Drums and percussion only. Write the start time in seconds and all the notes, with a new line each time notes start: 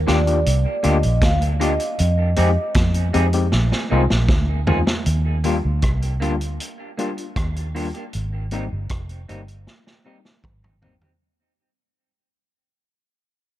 0.08 snare, closed hi-hat
0.27 closed hi-hat
0.46 closed hi-hat
0.84 closed hi-hat
1.03 closed hi-hat
1.22 kick, snare, closed hi-hat
1.42 closed hi-hat
1.61 closed hi-hat
1.80 closed hi-hat
1.99 closed hi-hat
2.36 closed hi-hat
2.74 kick, snare, closed hi-hat
2.94 closed hi-hat
3.14 closed hi-hat
3.33 closed hi-hat
3.52 snare
3.72 snare
4.10 snare
4.29 kick, snare
4.67 floor tom
4.87 snare
5.06 closed hi-hat
5.44 closed hi-hat
5.82 kick, cross-stick, closed hi-hat
6.02 closed hi-hat
6.22 closed hi-hat
6.41 closed hi-hat
6.60 closed hi-hat
6.99 closed hi-hat
7.18 closed hi-hat
7.36 kick, cross-stick, closed hi-hat
7.56 closed hi-hat
7.76 open hi-hat
7.95 closed hi-hat
8.13 closed hi-hat
8.51 closed hi-hat
8.89 kick, cross-stick, closed hi-hat
9.09 closed hi-hat
9.29 closed hi-hat
9.48 closed hi-hat
9.67 snare
9.87 snare
10.25 snare
10.44 kick, mid tom
10.64 mid tom
10.82 floor tom
11.01 floor tom